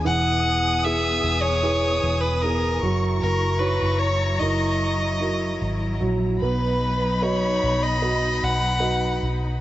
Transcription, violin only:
0.07 0.86 F#5 loud
0.84 1.43 E5 loud
1.42 2.23 C#5 loud
2.21 2.43 B4 medium
2.42 3.02 A#4 loud
3.21 3.61 A#4 loud
3.59 4.01 B4 medium
3.99 4.41 C#5 medium
4.39 6.01 D#5 medium
6.42 7.24 B4 medium
7.23 7.84 C#5 medium
7.83 8.45 D#5 loud
8.44 9.22 F#5 loud

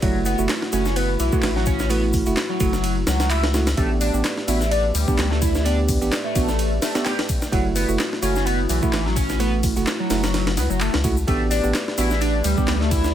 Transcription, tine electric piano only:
0.02 0.36 A3 medium
0.02 0.36 E4 medium
0.02 0.36 F#4 medium
0.39 0.48 A3 medium
0.39 0.48 E4 medium
0.39 0.48 F#4 medium
0.73 0.84 A3 medium
0.73 0.84 E4 medium
0.73 0.85 F#4 loud
1.33 1.49 A3 medium
1.33 1.49 E4 medium
1.33 1.49 F#4 medium
1.90 2.23 A3 medium
1.90 2.23 E4 medium
1.90 2.23 F#4 medium
2.26 2.36 A3 medium
2.26 2.36 E4 medium
2.26 2.36 F#4 medium
2.60 2.72 A3 medium
2.60 2.72 E4 medium
2.60 2.72 F#4 loud
3.54 3.66 A3 medium
3.54 3.66 E4 medium
3.54 3.66 F#4 medium
3.78 4.11 B3 medium
3.78 4.11 D4 medium
3.78 4.11 G4 medium
4.14 4.24 B3 medium
4.14 4.24 D4 medium
4.14 4.24 G4 medium
4.48 4.60 B3 medium
4.48 4.60 D4 medium
4.48 4.60 F#4 medium
5.08 5.24 B3 medium
5.08 5.24 D4 medium
5.08 5.24 G4 medium
5.65 5.98 B3 medium
5.65 5.98 D4 medium
5.65 5.98 G4 medium
6.01 6.11 B3 medium
6.01 6.11 D4 medium
6.01 6.11 G4 medium
6.36 6.47 B3 medium
6.36 6.47 D4 medium
6.36 6.47 F#4 loud
6.95 7.11 B3 medium
6.95 7.11 D4 medium
6.95 7.11 G4 medium
7.52 7.86 A3 medium
7.52 7.86 E4 medium
7.52 7.86 F#4 medium
7.89 7.98 A3 medium
7.89 7.98 E4 medium
7.89 7.98 F#4 medium
8.23 8.34 A3 medium
8.23 8.34 E4 medium
8.23 8.34 F#4 loud
8.82 8.99 A3 medium
8.82 8.99 E4 medium
8.82 8.99 F#4 medium
9.40 9.73 A3 medium
9.40 9.73 E4 medium
9.40 9.73 F#4 medium
9.77 9.86 A3 medium
9.77 9.86 E4 medium
9.77 9.86 F#4 medium
10.10 10.22 A3 medium
10.10 10.22 E4 medium
10.10 10.22 F#4 medium
11.04 11.16 A3 medium
11.04 11.16 E4 medium
11.04 11.16 F#4 medium
11.28 11.61 B3 medium
11.28 11.61 D4 medium
11.28 11.61 G4 medium
11.64 11.73 B3 medium
11.64 11.73 D4 medium
11.64 11.73 G4 medium
11.98 12.09 B3 medium
11.98 12.10 D4 medium
11.98 12.10 F#4 loud
12.58 12.74 B3 medium
12.58 12.74 D4 medium
12.58 12.74 G4 loud

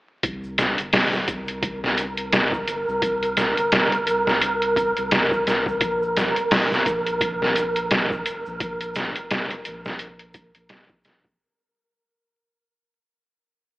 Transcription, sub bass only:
0.24 0.75 C2 medium
0.78 1.30 G1 medium
1.28 2.65 C2 medium
2.67 2.85 G1 loud
2.88 3.54 C2 medium
3.57 4.09 G1 loud
4.07 4.93 C2 loud
4.97 5.79 C2 loud
5.81 6.32 A#1 loud
6.36 6.87 F1 loud
6.86 8.23 A#1 loud
8.26 8.43 F1 loud
8.47 9.12 A#1 medium
9.16 9.67 F1 loud
9.65 10.51 A#1 loud
10.55 11.37 A#1 medium

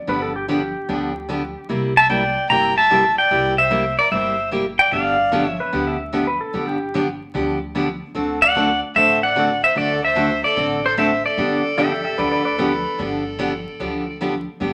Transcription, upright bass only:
0.08 0.73 G1 medium
0.89 1.53 D2 medium
1.70 2.34 C2 medium
2.50 3.15 G1 medium
3.31 3.95 C2 medium
4.12 4.76 G1 medium
4.92 5.57 G1 medium
5.73 6.38 D2 medium
6.54 7.18 G1 medium
7.35 7.99 D2 medium
8.15 8.80 D2 medium
8.96 9.60 A1 medium
9.77 10.41 D2 medium
10.57 11.22 A1 medium
11.38 12.02 G1 medium
12.18 12.83 D2 medium
12.99 13.64 G1 medium
13.80 14.45 D2 medium
14.61 14.73 G1 medium

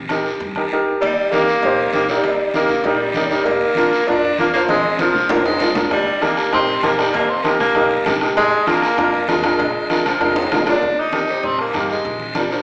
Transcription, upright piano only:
0.11 0.27 D#4 medium
0.11 0.27 G4 medium
0.11 0.27 A#4 medium
0.57 0.62 D#4 medium
0.57 0.62 G4 medium
0.57 0.62 A#4 medium
0.72 0.93 D#4 medium
0.72 0.93 G4 medium
0.72 0.94 A#4 medium
1.33 1.44 D#4 medium
1.33 1.44 G4 medium
1.33 1.44 A#4 medium
1.64 1.74 D#4 medium
1.64 1.74 G4 medium
1.64 1.75 C5 loud
1.95 2.00 D#4 medium
1.95 2.00 G4 medium
1.95 2.00 A#4 medium
2.10 2.26 D#4 medium
2.10 2.26 G4 medium
2.10 2.26 A#4 medium
2.55 2.66 D#4 medium
2.55 2.66 G4 medium
2.55 2.66 A#4 medium
2.85 2.96 D#4 medium
2.85 2.96 G4 medium
2.85 2.97 A#4 medium
3.16 3.21 D#4 medium
3.16 3.21 G4 medium
3.16 3.22 A#4 medium
3.31 3.46 D#4 medium
3.31 3.46 G4 medium
3.31 3.47 A#4 medium
3.77 3.88 D4 medium
3.77 3.88 F4 medium
3.77 3.88 A#4 medium
4.08 4.19 D4 medium
4.08 4.19 F4 medium
4.08 4.19 A#4 medium
4.39 4.44 D4 medium
4.39 4.44 F4 medium
4.39 4.45 A#4 medium
4.55 4.70 D4 medium
4.55 4.71 F4 medium
4.55 4.71 C5 medium
5.00 5.11 D4 medium
5.00 5.11 F4 medium
5.00 5.11 A#4 medium
5.31 5.42 D4 medium
5.31 5.41 F4 medium
5.31 5.42 A#4 medium
5.62 5.67 D4 medium
5.62 5.67 F4 medium
5.62 5.67 A#4 medium
5.76 5.91 D4 medium
5.76 5.92 F4 medium
5.76 5.92 A#4 medium
6.21 6.32 D#4 medium
6.21 6.32 G4 medium
6.21 6.33 A#4 medium
6.52 6.63 D#4 medium
6.52 6.64 G4 medium
6.52 6.64 A#4 loud
6.83 6.89 D#4 medium
6.83 6.89 G4 medium
6.83 6.89 A#4 medium
6.99 7.15 D#4 medium
6.99 7.15 G4 medium
6.99 7.15 A#4 medium
7.45 7.56 D#4 medium
7.45 7.56 G4 medium
7.45 7.56 A#4 medium
7.76 7.86 D#4 medium
7.76 7.87 G4 medium
7.76 7.87 A#4 medium
8.06 8.11 D#4 medium
8.06 8.12 G4 medium
8.06 8.12 A#4 medium
8.22 8.37 D#4 medium
8.22 8.37 G4 medium
8.22 8.38 A#4 medium
8.67 8.78 D4 medium
8.67 8.78 F4 medium
8.67 8.78 A#4 medium
8.97 9.09 D4 medium
8.97 9.09 F4 medium
8.97 9.09 A#4 medium
9.28 9.34 D4 medium
9.28 9.34 F4 medium
9.28 9.34 A#4 medium
9.44 9.60 D4 medium
9.44 9.60 F4 medium
9.44 9.60 A#4 medium
9.90 10.01 D4 medium
9.90 10.01 F4 medium
9.90 10.01 A#4 medium
10.20 10.31 D4 medium
10.20 10.32 F4 medium
10.20 10.32 A#4 medium
10.52 10.57 D4 medium
10.52 10.57 F4 medium
10.52 10.57 A#4 medium
10.67 10.82 D4 medium
10.67 10.83 F4 medium
10.67 10.83 A#4 medium
11.13 11.18 D#4 medium
11.13 11.19 G4 medium
11.13 11.19 A#4 medium
11.29 11.45 D#4 medium
11.29 11.45 G4 soft
11.29 11.46 C5 medium
11.74 11.96 D#4 medium
11.74 11.96 G4 medium
11.74 11.96 A#4 medium
12.36 12.41 D4 medium
12.36 12.42 F4 medium
12.36 12.42 A#4 medium
12.51 12.62 D4 medium
12.51 12.62 F4 medium
12.51 12.62 A#4 medium

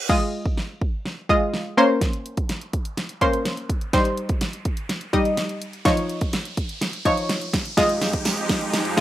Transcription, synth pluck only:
0.09 0.81 G#3 medium
0.09 0.81 F4 medium
0.09 0.81 D#5 medium
1.29 1.77 G#3 medium
1.29 1.78 F4 medium
1.29 1.78 D#5 medium
1.77 2.54 A#3 medium
1.77 2.54 C#4 medium
1.77 2.54 C5 loud
3.21 3.75 A#3 medium
3.21 3.75 C#4 medium
3.21 3.75 C5 loud
3.93 4.65 G3 medium
3.93 4.65 D#4 medium
3.93 4.65 C5 loud
5.13 5.67 G3 medium
5.13 5.67 D#4 medium
5.13 5.67 D#5 medium
5.85 6.57 F3 medium
5.85 6.57 D#4 medium
5.85 6.57 C#5 medium
7.05 7.59 F3 medium
7.05 7.59 D#4 medium
7.05 7.59 C#5 loud
7.77 8.49 G#3 medium
7.77 8.49 F4 medium
7.77 8.49 D#5 medium
8.97 9.01 G#3 medium
8.97 9.01 F4 medium

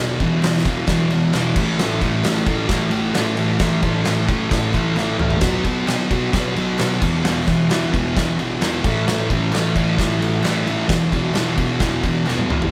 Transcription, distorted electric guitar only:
0.00 0.20 E2 medium
0.00 0.21 B2 loud
0.00 0.22 E3 loud
0.21 0.43 E2 medium
0.21 0.43 B2 medium
0.21 0.45 E3 loud
0.44 0.66 E2 medium
0.44 0.67 B2 loud
0.44 0.67 E3 loud
0.67 0.88 E2 loud
0.67 0.88 B2 loud
0.67 0.90 E3 loud
0.89 1.11 E2 loud
0.89 1.13 B2 loud
0.89 1.13 E3 loud
1.12 1.34 E2 medium
1.12 1.35 B2 medium
1.12 1.36 E3 loud
1.35 1.56 E2 loud
1.35 1.56 B2 loud
1.35 1.57 E3 loud
1.57 1.80 A2 loud
1.57 1.80 E3 loud
1.57 1.81 A3 loud
1.80 2.01 A2 loud
1.80 2.02 E3 loud
1.80 2.03 A3 loud
2.02 2.24 A2 medium
2.02 2.24 E3 medium
2.02 2.25 A3 loud
2.24 2.47 A2 medium
2.24 2.48 E3 loud
2.24 2.48 A3 medium
2.47 2.68 A2 medium
2.47 2.68 E3 loud
2.47 2.69 A3 loud
2.69 2.90 A2 loud
2.69 2.90 E3 loud
2.69 2.91 A3 loud
2.91 3.13 A2 loud
2.91 3.13 E3 medium
2.91 3.14 A3 loud
3.14 3.35 A2 loud
3.14 3.36 E3 loud
3.14 3.37 A3 loud
3.37 3.57 A2 medium
3.37 3.58 E3 medium
3.37 3.59 A3 medium
3.58 3.81 A2 medium
3.58 3.81 E3 loud
3.58 3.82 A3 loud
3.82 4.04 A2 medium
3.82 4.05 E3 medium
3.82 4.05 A3 medium
4.06 4.27 A2 loud
4.06 4.28 E3 medium
4.06 4.28 A3 loud
4.28 4.49 A2 medium
4.28 4.50 E3 loud
4.28 4.50 A3 loud
4.50 4.73 A2 medium
4.50 4.73 E3 loud
4.50 4.74 A3 loud
4.74 4.95 A2 medium
4.74 4.96 E3 loud
4.74 4.96 A3 loud
4.96 5.17 A2 loud
4.96 5.17 E3 loud
4.96 5.18 A3 loud
5.18 5.40 A2 medium
5.18 5.40 E3 medium
5.18 5.40 A3 loud
5.41 5.63 B2 medium
5.41 5.63 F#3 medium
5.41 5.65 B3 loud
5.64 5.85 B2 loud
5.64 5.86 F#3 medium
5.64 5.87 B3 medium
5.87 6.09 B2 medium
5.87 6.10 F#3 loud
5.87 6.11 B3 loud
6.10 6.31 B2 medium
6.10 6.32 F#3 loud
6.10 6.32 B3 medium
6.32 6.54 B2 loud
6.32 6.55 F#3 loud
6.32 6.55 B3 loud
6.55 6.78 B2 medium
6.55 6.79 F#3 medium
6.55 6.80 B3 medium
6.79 7.00 B2 loud
6.79 7.01 F#3 loud
6.79 7.01 B3 loud
7.01 7.23 E2 medium
7.01 7.23 B2 medium
7.01 7.25 E3 loud
7.24 7.45 E2 medium
7.24 7.46 B2 loud
7.24 7.48 E3 loud
7.46 7.69 E2 medium
7.46 7.70 B2 medium
7.46 7.71 E3 loud
7.70 7.92 E2 medium
7.70 7.92 B2 loud
7.70 7.94 E3 loud
7.93 8.16 E2 medium
7.93 8.16 B2 medium
7.93 8.18 E3 medium
8.17 8.38 E2 loud
8.17 8.39 B2 loud
8.17 8.41 E3 loud
8.39 8.60 E2 medium
8.39 8.61 B2 loud
8.39 8.62 E3 loud
8.61 8.82 E2 loud
8.61 8.83 B2 loud
8.61 8.85 E3 loud
8.84 9.06 A2 medium
8.84 9.08 E3 loud
8.84 9.07 A3 loud
9.07 9.28 A2 loud
9.07 9.30 E3 loud
9.07 9.29 A3 loud
9.29 9.52 A2 loud
9.29 9.54 E3 loud
9.29 9.53 A3 loud
9.53 9.74 A2 medium
9.53 9.76 E3 loud
9.53 9.76 A3 loud
9.76 9.97 A2 loud
9.76 9.98 E3 medium
9.76 9.98 A3 loud
9.98 10.19 A2 loud
9.98 10.20 E3 loud
9.98 10.21 A3 loud
10.21 10.43 A2 loud
10.21 10.43 E3 loud
10.21 10.44 A3 medium
10.44 10.65 A2 loud
10.44 10.66 E3 loud
10.44 10.66 A3 loud
10.66 10.88 A2 medium
10.66 10.88 E3 medium
10.66 10.88 A3 medium
10.88 11.12 E2 medium
10.88 11.13 B2 loud
10.88 11.13 E3 loud
11.13 11.34 E2 medium
11.13 11.35 B2 medium
11.13 11.35 E3 loud
11.35 11.57 E2 medium
11.35 11.57 B2 loud
11.35 11.58 E3 loud
11.58 11.79 E2 medium
11.58 11.80 B2 medium
11.58 11.81 E3 loud
11.81 12.03 E2 loud
11.81 12.04 B2 loud
11.81 12.04 E3 loud
12.04 12.25 E2 medium
12.04 12.25 B2 loud
12.04 12.27 E3 loud
12.26 12.49 E2 loud
12.26 12.49 B2 loud
12.26 12.49 E3 loud
12.50 12.71 E2 medium
12.50 12.71 B2 medium
12.50 12.71 E3 loud

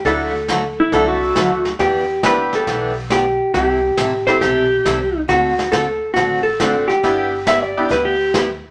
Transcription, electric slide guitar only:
0.80 0.93 E4 medium
0.94 1.07 A4 medium
1.08 1.72 F#4 medium
4.27 4.41 C5 medium
4.41 5.19 G4 medium
7.47 7.61 E5 medium
7.63 7.90 D5 medium
7.91 8.05 B4 medium
8.05 8.47 G4 medium

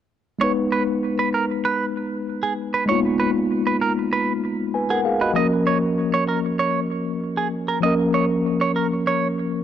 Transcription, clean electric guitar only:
0.41 0.51 C#5 loud
0.72 0.82 B4 medium
1.19 1.29 B4 medium
1.34 1.44 A#4 medium
1.65 1.85 B4 medium
2.43 2.52 G#4 medium
2.74 2.83 B4 medium
2.89 2.99 C#5 loud
3.20 3.30 B4 medium
3.67 3.76 B4 medium
3.81 3.92 A#4 medium
4.13 4.32 B4 medium
4.90 5.00 G#4 medium
5.21 5.31 B4 medium
5.36 5.46 D#5 loud
5.67 5.77 C#5 medium
6.14 6.23 C#5 medium
6.29 6.39 A#4 medium
6.59 6.79 C#5 medium
7.37 7.47 G#4 medium
7.68 7.78 A#4 medium
7.83 7.94 D#5 loud
8.14 8.25 C#5 medium
8.61 8.71 C#5 medium
8.76 8.86 A#4 medium
9.07 9.27 C#5 medium

